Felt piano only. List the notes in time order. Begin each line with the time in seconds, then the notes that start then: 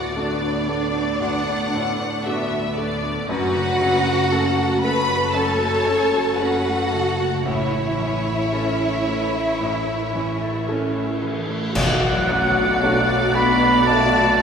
Already playing: D2 A2
0.17 A3 D4 F#4
0.69 A3
1.21 D2
1.74 A2
2.26 A3 D4 F#4
2.78 A3
3.29 F#2
3.81 C#3
4.31 A3 C#4 A4
4.84 A3
5.34 F#2
5.86 C#3
6.39 A3 C#4 A4
6.93 A3
7.45 A2
7.99 E3
8.52 A3 C#4 A4
9.07 A3
9.61 A2
10.15 E3
10.68 A3 C#4 A4
11.22 A3
11.75 B1
12.29 F#2
12.83 A3 D4 F#4
13.35 A3
13.86 B1